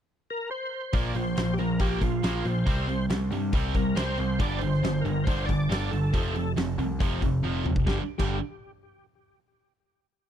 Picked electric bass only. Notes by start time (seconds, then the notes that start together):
0.93 A#1
1.15 A#1
1.37 A#1
1.60 A#1
1.80 A#1
2.01 A#1
2.24 A#1
2.45 A#1
2.66 C2
3.10 C2
3.31 G2
3.53 C2
3.75 C2
3.97 C2
4.19 C2
4.40 G1
4.62 G1
4.83 G1
5.05 G1
5.27 G1
5.49 G1
5.70 G1
5.92 G1
6.14 F1
6.57 F1
6.78 C2
7.00 F1
7.22 F1
7.43 F1
7.65 F1
7.87 G1
8.20 G1